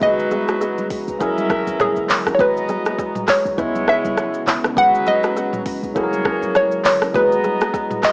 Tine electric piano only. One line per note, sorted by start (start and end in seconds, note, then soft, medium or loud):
0.00 0.94 G#3 medium
0.00 0.94 F#4 medium
0.00 0.95 G#4 medium
0.00 0.95 B4 medium
1.19 2.13 F#3 medium
1.19 2.13 E4 medium
1.19 2.13 G#4 medium
1.19 2.14 A#4 loud
2.38 3.31 G#3 medium
2.38 3.32 F#4 medium
2.38 3.32 G#4 medium
2.38 3.33 B4 medium
3.57 4.50 C#3 medium
3.57 4.51 B3 medium
3.57 4.51 E4 medium
3.57 4.52 E5 medium
4.75 5.69 G#3 medium
4.75 5.70 F#4 medium
4.75 5.70 G#4 medium
4.75 5.70 B4 medium
5.94 6.88 F#3 medium
5.94 6.88 E4 medium
5.94 6.89 G#4 medium
5.94 6.04 A4 medium
6.03 6.92 A#4 loud
7.13 8.07 G#3 medium
7.13 8.07 F#4 medium
7.13 8.08 G#4 medium
7.13 8.08 B4 medium